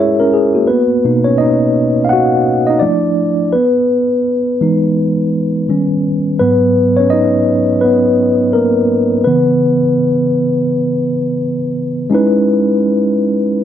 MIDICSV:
0, 0, Header, 1, 2, 480
1, 0, Start_track
1, 0, Tempo, 714286
1, 457, Time_signature, 4, 2, 24, 8
1, 9166, End_track
2, 0, Start_track
2, 0, Title_t, "Tine electric piano"
2, 0, Program_c, 0, 4
2, 0, Control_c, 0, 64, 127
2, 0, Note_on_c, 0, 56, 73
2, 0, Note_on_c, 0, 64, 55
2, 0, Note_on_c, 0, 68, 53
2, 0, Note_on_c, 0, 73, 67
2, 0, Note_on_c, 0, 76, 63
2, 126, Note_off_c, 0, 73, 0
2, 128, Note_off_c, 0, 64, 0
2, 133, Note_on_c, 0, 70, 70
2, 138, Note_on_c, 0, 61, 60
2, 217, Note_off_c, 0, 70, 0
2, 220, Note_off_c, 0, 61, 0
2, 225, Note_off_c, 0, 68, 0
2, 225, Note_on_c, 0, 68, 64
2, 361, Note_off_c, 0, 68, 0
2, 367, Note_on_c, 0, 66, 57
2, 372, Note_on_c, 0, 58, 51
2, 430, Note_off_c, 0, 56, 0
2, 453, Note_on_c, 0, 71, 76
2, 464, Control_c, 0, 64, 0
2, 467, Note_on_c, 0, 59, 59
2, 470, Note_off_c, 0, 76, 0
2, 578, Control_c, 0, 64, 127
2, 594, Note_off_c, 0, 66, 0
2, 597, Note_off_c, 0, 58, 0
2, 703, Note_on_c, 0, 47, 49
2, 705, Note_on_c, 0, 58, 45
2, 708, Note_on_c, 0, 63, 52
2, 816, Note_off_c, 0, 71, 0
2, 823, Note_off_c, 0, 59, 0
2, 836, Note_on_c, 0, 73, 78
2, 854, Note_on_c, 0, 61, 60
2, 928, Note_on_c, 0, 75, 88
2, 935, Note_off_c, 0, 61, 0
2, 936, Note_off_c, 0, 73, 0
2, 938, Note_off_c, 0, 63, 0
2, 946, Note_on_c, 0, 63, 71
2, 1359, Note_off_c, 0, 63, 0
2, 1375, Note_on_c, 0, 77, 66
2, 1390, Note_off_c, 0, 75, 0
2, 1406, Note_on_c, 0, 78, 90
2, 1414, Note_off_c, 0, 77, 0
2, 1430, Note_on_c, 0, 66, 72
2, 1784, Note_off_c, 0, 66, 0
2, 1793, Note_on_c, 0, 75, 82
2, 1811, Note_off_c, 0, 78, 0
2, 1812, Note_on_c, 0, 63, 66
2, 1873, Note_off_c, 0, 47, 0
2, 1874, Note_off_c, 0, 58, 0
2, 1878, Note_on_c, 0, 74, 85
2, 1890, Note_on_c, 0, 53, 51
2, 1894, Note_off_c, 0, 63, 0
2, 1894, Note_off_c, 0, 75, 0
2, 1896, Note_on_c, 0, 57, 44
2, 1897, Note_on_c, 0, 64, 51
2, 1899, Note_on_c, 0, 62, 66
2, 1907, Control_c, 0, 64, 0
2, 2027, Control_c, 0, 64, 127
2, 2349, Note_off_c, 0, 53, 0
2, 2351, Note_off_c, 0, 62, 0
2, 2352, Note_off_c, 0, 57, 0
2, 2353, Note_off_c, 0, 64, 0
2, 2369, Note_on_c, 0, 71, 75
2, 2382, Note_off_c, 0, 74, 0
2, 2386, Control_c, 0, 64, 0
2, 2388, Note_on_c, 0, 59, 59
2, 2487, Control_c, 0, 64, 127
2, 3098, Note_on_c, 0, 52, 51
2, 3099, Note_on_c, 0, 56, 44
2, 3106, Note_on_c, 0, 63, 57
2, 3790, Note_off_c, 0, 52, 0
2, 3791, Note_off_c, 0, 56, 0
2, 3794, Note_off_c, 0, 63, 0
2, 3822, Note_on_c, 0, 51, 52
2, 3824, Control_c, 0, 64, 0
2, 3826, Note_on_c, 0, 55, 48
2, 3830, Note_on_c, 0, 61, 59
2, 3940, Control_c, 0, 64, 127
2, 4026, Note_off_c, 0, 71, 0
2, 4035, Note_off_c, 0, 59, 0
2, 4276, Note_off_c, 0, 51, 0
2, 4278, Note_off_c, 0, 55, 0
2, 4280, Note_off_c, 0, 61, 0
2, 4297, Note_on_c, 0, 71, 88
2, 4304, Note_on_c, 0, 44, 53
2, 4305, Control_c, 0, 64, 0
2, 4310, Note_on_c, 0, 54, 46
2, 4311, Note_on_c, 0, 59, 73
2, 4416, Control_c, 0, 64, 127
2, 4666, Note_off_c, 0, 59, 0
2, 4681, Note_on_c, 0, 73, 85
2, 4696, Note_off_c, 0, 71, 0
2, 4703, Note_on_c, 0, 61, 63
2, 4772, Note_on_c, 0, 75, 99
2, 4778, Note_off_c, 0, 73, 0
2, 4780, Note_off_c, 0, 61, 0
2, 4793, Note_on_c, 0, 63, 75
2, 4993, Note_off_c, 0, 44, 0
2, 4996, Note_off_c, 0, 54, 0
2, 5238, Note_off_c, 0, 63, 0
2, 5249, Note_on_c, 0, 71, 84
2, 5269, Note_off_c, 0, 75, 0
2, 5270, Note_on_c, 0, 59, 64
2, 5717, Note_off_c, 0, 59, 0
2, 5734, Note_on_c, 0, 70, 78
2, 5748, Note_off_c, 0, 71, 0
2, 5753, Note_on_c, 0, 58, 64
2, 6188, Note_off_c, 0, 70, 0
2, 6198, Note_off_c, 0, 58, 0
2, 6212, Note_on_c, 0, 71, 75
2, 6226, Control_c, 0, 64, 0
2, 6228, Note_on_c, 0, 49, 54
2, 6229, Note_on_c, 0, 52, 49
2, 6233, Note_on_c, 0, 59, 65
2, 6345, Control_c, 0, 64, 127
2, 6563, Note_off_c, 0, 49, 0
2, 6563, Note_off_c, 0, 52, 0
2, 7627, Note_off_c, 0, 71, 0
2, 7638, Note_off_c, 0, 59, 0
2, 8130, Note_on_c, 0, 56, 74
2, 8137, Note_on_c, 0, 61, 70
2, 8145, Control_c, 0, 64, 0
2, 8146, Note_on_c, 0, 63, 71
2, 8154, Note_on_c, 0, 64, 67
2, 8162, Note_on_c, 0, 71, 84
2, 8247, Control_c, 0, 64, 127
2, 9166, Note_off_c, 0, 56, 0
2, 9166, Note_off_c, 0, 61, 0
2, 9166, Note_off_c, 0, 63, 0
2, 9166, Note_off_c, 0, 64, 0
2, 9166, Note_off_c, 0, 71, 0
2, 9166, End_track
0, 0, End_of_file